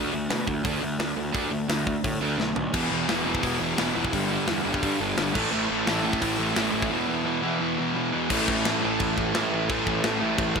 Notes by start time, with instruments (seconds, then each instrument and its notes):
Already playing: overdriven electric guitar D3 A3 D4
0.12 picked electric bass D2, overdriven electric guitar D3 A3
0.29 picked electric bass B2, overdriven electric guitar D3 A3, snare, open hi-hat
0.47 picked electric bass D2, overdriven electric guitar D3 A3, kick
0.64 picked electric bass D2, overdriven electric guitar D3 A3 D4, kick, open hi-hat
0.81 picked electric bass D2, overdriven electric guitar D3 A3
0.99 picked electric bass D2, overdriven electric guitar D3 A3, snare, open hi-hat
1.16 picked electric bass D2, overdriven electric guitar D3 A3
1.32 picked electric bass D2, overdriven electric guitar D3 A3 D4, kick, open hi-hat
1.50 picked electric bass D2, overdriven electric guitar D3 A3
1.68 picked electric bass D2, overdriven electric guitar D3 A3, snare, open hi-hat
1.86 overdriven electric guitar D3 A3, kick
2.04 picked electric bass A2, overdriven electric guitar D3 A3, kick, open hi-hat
2.21 picked electric bass D2, overdriven electric guitar D3 A3 D4
2.38 picked electric bass B1, overdriven electric guitar D3 A3, snare
2.55 picked electric bass B1, overdriven electric guitar D3 A3, floor tom
2.73 picked electric bass E1, overdriven electric guitar E2 B2 E3, kick, crash
2.91 picked electric bass E1, overdriven electric guitar E2 B2 E3
3.08 picked electric bass E1, overdriven electric guitar E2 B2 E3, snare, open hi-hat
3.25 overdriven electric guitar E2 B2 E3
3.30 distorted electric guitar E2
3.35 kick
3.42 picked electric bass E1, overdriven electric guitar E2 B2 E3, kick, open hi-hat
3.59 picked electric bass E1, overdriven electric guitar E2 B2 E3
3.77 picked electric bass E1, overdriven electric guitar E2 B2 E3, snare, open hi-hat
3.94 picked electric bass E1, overdriven electric guitar E2 B2 E3
4.05 kick
4.13 picked electric bass G1, overdriven electric guitar G2 D3 G3, kick, open hi-hat
4.30 overdriven electric guitar G2 D3 G3
4.47 picked electric bass E2, overdriven electric guitar G2 D3 G3, snare, open hi-hat
4.63 picked electric bass G1, overdriven electric guitar G2 D3 G3
4.68 distorted electric guitar G2
4.74 kick
4.80 overdriven electric guitar G2 D3 G3, picked electric bass G2, kick, open hi-hat
5.00 picked electric bass G1, overdriven electric guitar G2 D3 G3
5.16 picked electric bass G1, overdriven electric guitar G2 D3 G3, snare, open hi-hat
5.33 picked electric bass A1, overdriven electric guitar A2 E3 A3, kick, crash
5.39 distorted electric guitar A3
5.52 picked electric bass A1, overdriven electric guitar A2 E3 A3
5.68 picked electric bass A1, overdriven electric guitar A2 E3 A3
5.86 picked electric bass A1, overdriven electric guitar A2 E3 A3, snare, open hi-hat
6.03 overdriven electric guitar A2 E3 A3
6.13 kick
6.21 picked electric bass A1, overdriven electric guitar A2 E3 A3, kick, open hi-hat
6.37 picked electric bass A1, overdriven electric guitar A2 E3 A3
6.53 picked electric bass A1, overdriven electric guitar A2 E3 A3, snare, open hi-hat
6.71 picked electric bass A1, overdriven electric guitar A2 E3 A3
6.82 kick
6.88 overdriven electric guitar E2 B2 E3
7.07 overdriven electric guitar E2 B2 E3
7.25 overdriven electric guitar E2 B2 E3
7.41 overdriven electric guitar E2 B2 E3
7.46 distorted electric guitar E2
7.59 overdriven electric guitar E2 B2 E3
7.77 overdriven electric guitar E2 B2 E3
7.94 overdriven electric guitar E2 B2 E3
8.11 overdriven electric guitar E2 B2 E3
8.28 picked electric bass A1, overdriven electric guitar A2 E3 A3, kick, crash
8.35 distorted electric guitar A3
8.48 picked electric bass A1, kick
8.65 picked electric bass A1, snare, crash
8.81 picked electric bass A1, overdriven electric guitar A2 E3 A3
9.00 picked electric bass A1, kick, crash
9.18 picked electric bass A1, kick
9.33 picked electric bass A1, overdriven electric guitar A2 E3 A3, snare, crash
9.53 picked electric bass A1
9.68 picked electric bass A1, overdriven electric guitar A2 E3 A3, kick, crash
9.87 picked electric bass A1, kick
10.03 picked electric bass A1, snare, crash
10.20 picked electric bass A1, overdriven electric guitar A2 E3 A3
10.38 picked electric bass A1, kick, crash
10.56 picked electric bass A1, kick